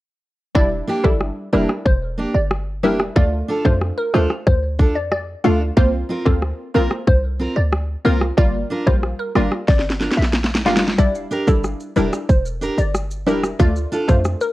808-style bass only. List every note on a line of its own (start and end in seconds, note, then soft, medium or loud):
0.55 0.82 E1 medium
1.04 1.31 G1 medium
1.53 1.66 E1 loud
1.86 2.26 E1 loud
2.34 2.85 G1 medium
2.83 3.10 E1 loud
3.16 3.43 D2 loud
3.65 3.92 F2 medium
4.14 4.27 D2 loud
4.47 4.97 D2 loud
4.95 5.36 F2 medium
5.44 5.71 D2 medium
5.77 6.04 C2 loud
6.26 6.53 D2 medium
6.75 6.88 A#1 medium
7.07 7.48 C2 loud
7.56 7.96 D2 medium
8.05 8.32 C2 medium
8.38 8.65 G1 loud
8.87 9.14 A#1 medium
9.35 9.49 G1 medium
9.68 10.09 G1 loud
10.17 10.68 A#1 medium
10.66 11.00 G1 medium
10.99 11.26 E1 loud
11.48 11.75 G1 medium
11.96 12.10 E1 loud
12.29 12.69 E1 loud
12.78 13.28 G1 medium
13.27 13.54 E1 loud
13.60 13.86 D2 loud
14.09 14.35 F2 medium